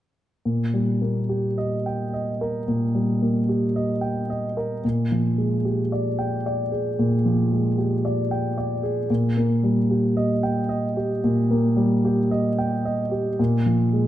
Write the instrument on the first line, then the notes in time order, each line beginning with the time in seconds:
grand piano
0.45 A#2
0.74 G3
1.01 A#3
1.29 G4
1.58 D#5
1.86 G5
2.14 D#5
2.41 A#4
2.68 A#2
2.95 G3
3.22 A#3
3.49 G4
3.76 D#5
4.01 G5
4.30 D#5
4.57 A#4
4.85 A#2
5.12 F3
5.38 G#3
5.65 G4
5.92 D5
6.19 G5
6.46 D5
6.72 G#4
6.99 A#2
7.25 F3
7.52 G#3
7.78 G4
8.05 D5
8.31 G5
8.58 D5
8.83 G#4
9.10 A#2
9.37 A#3
9.63 G3
9.90 G4
10.17 D#5
10.43 G5
10.69 D#5
10.97 G4
11.24 A#2
11.51 A#3
11.77 G3
12.05 G4
12.31 D#5
12.59 G5
12.85 D#5
13.11 G4
13.39 A#2
13.66 F3
13.93 G#3